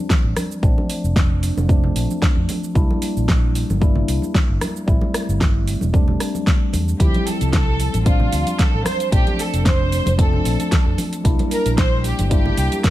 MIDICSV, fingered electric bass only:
0, 0, Header, 1, 2, 480
1, 0, Start_track
1, 0, Key_signature, -1, "minor"
1, 0, Tempo, 530973
1, 570, Time_signature, 4, 2, 24, 8
1, 11663, End_track
2, 0, Start_track
2, 0, Title_t, "Fingered electric bass"
2, 0, Program_c, 0, 33
2, 217, Note_on_c, 0, 33, 77
2, 292, Note_off_c, 0, 33, 0
2, 568, Note_on_c, 0, 34, 95
2, 656, Note_off_c, 0, 34, 0
2, 938, Note_on_c, 0, 29, 79
2, 1351, Note_off_c, 0, 29, 0
2, 1419, Note_on_c, 0, 29, 85
2, 1712, Note_off_c, 0, 29, 0
2, 1768, Note_on_c, 0, 34, 87
2, 1856, Note_off_c, 0, 34, 0
2, 2139, Note_on_c, 0, 41, 78
2, 2213, Note_off_c, 0, 41, 0
2, 2489, Note_on_c, 0, 36, 95
2, 2577, Note_off_c, 0, 36, 0
2, 2863, Note_on_c, 0, 34, 77
2, 3273, Note_off_c, 0, 34, 0
2, 3342, Note_on_c, 0, 31, 84
2, 3633, Note_off_c, 0, 31, 0
2, 3691, Note_on_c, 0, 36, 87
2, 3777, Note_off_c, 0, 36, 0
2, 4063, Note_on_c, 0, 31, 80
2, 4135, Note_off_c, 0, 31, 0
2, 4410, Note_on_c, 0, 33, 95
2, 4497, Note_off_c, 0, 33, 0
2, 4780, Note_on_c, 0, 31, 80
2, 5191, Note_off_c, 0, 31, 0
2, 5260, Note_on_c, 0, 28, 86
2, 5552, Note_off_c, 0, 28, 0
2, 6090, Note_on_c, 0, 40, 82
2, 6257, Note_off_c, 0, 40, 0
2, 6327, Note_on_c, 0, 38, 93
2, 6415, Note_off_c, 0, 38, 0
2, 6701, Note_on_c, 0, 36, 79
2, 7112, Note_off_c, 0, 36, 0
2, 7178, Note_on_c, 0, 33, 85
2, 7471, Note_off_c, 0, 33, 0
2, 7528, Note_on_c, 0, 38, 91
2, 7616, Note_off_c, 0, 38, 0
2, 7899, Note_on_c, 0, 33, 78
2, 7973, Note_off_c, 0, 33, 0
2, 8248, Note_on_c, 0, 34, 98
2, 8336, Note_off_c, 0, 34, 0
2, 8619, Note_on_c, 0, 29, 81
2, 9031, Note_off_c, 0, 29, 0
2, 9098, Note_on_c, 0, 29, 84
2, 9391, Note_off_c, 0, 29, 0
2, 9449, Note_on_c, 0, 34, 91
2, 9536, Note_off_c, 0, 34, 0
2, 9818, Note_on_c, 0, 41, 80
2, 9893, Note_off_c, 0, 41, 0
2, 10169, Note_on_c, 0, 36, 95
2, 10256, Note_off_c, 0, 36, 0
2, 10538, Note_on_c, 0, 34, 82
2, 10950, Note_off_c, 0, 34, 0
2, 11017, Note_on_c, 0, 31, 88
2, 11311, Note_off_c, 0, 31, 0
2, 11367, Note_on_c, 0, 36, 90
2, 11456, Note_off_c, 0, 36, 0
2, 11663, End_track
0, 0, End_of_file